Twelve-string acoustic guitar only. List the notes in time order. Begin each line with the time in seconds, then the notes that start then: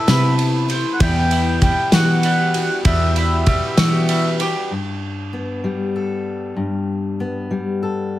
0.08 C3 E3 A3 B3 E4
0.69 A3 E4
1.00 E2 B2 E3 G3 B3
1.61 E3 G3 B3
1.92 E2 B2 E3 G3 B3 F#4
2.54 E3 G3 B3 F#4
2.85 E2 B2 E3 G3 B3 F#4
3.47 E3 G3 B3 F#4
3.78 E2 B2 E3 G3 B3 F#4
4.40 E3 G3 B3 F#4